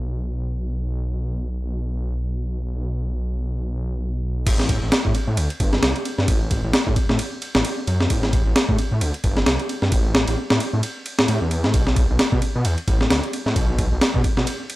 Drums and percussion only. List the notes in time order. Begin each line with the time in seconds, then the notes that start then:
4.47 kick, crash, ride
4.60 snare
4.69 kick, ride
4.92 snare, ride
5.05 kick
5.15 ride
5.37 ride
5.50 ride
5.60 kick, ride
5.73 snare
5.83 snare, ride
5.96 ride
6.05 ride
6.18 snare
6.28 kick, ride
6.51 kick, ride
6.73 snare, ride
6.87 kick
6.96 kick, ride
7.09 snare
7.19 ride
7.42 ride
7.55 snare
7.65 ride
7.87 ride
8.01 snare
8.10 kick, ride
8.23 snare
8.33 kick, ride
8.56 snare, ride
8.69 kick
8.78 ride
9.01 ride
9.14 ride
9.24 kick, ride
9.37 snare
9.46 snare, ride
9.60 ride
9.69 ride
9.82 snare
9.92 kick, ride
10.15 snare
10.28 ride
10.50 snare
10.60 ride
10.83 ride
11.06 ride
11.19 snare
11.28 ride
11.51 ride
11.64 snare
11.74 kick, ride
11.87 snare
11.96 kick, ride
12.19 snare, ride
12.32 kick
12.42 ride
12.65 ride
12.78 ride
12.88 kick, ride
13.01 snare
13.10 snare, ride
13.23 ride
13.33 ride
13.46 snare
13.56 kick, ride
13.79 kick, ride
14.01 snare, ride
14.14 kick
14.24 kick, ride
14.37 snare
14.47 ride
14.70 ride